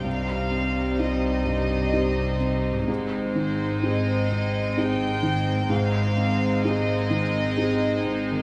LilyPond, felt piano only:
\new Staff \with { instrumentName = "Felt piano" } { \time 3/4 \key aes \lydian \tempo 4 = 64 <c, g,>8 c'8 <c' ees' g'>8 g,8 <c' ees' g'>8 c'8 | aes,8 ees8 <c' ees' aes'>8 c'8 <c' ees' aes'>8 ees8 | aes,8 c'8 <c' ees' aes'>8 ees8 <c' ees' aes'>8 c'8 | }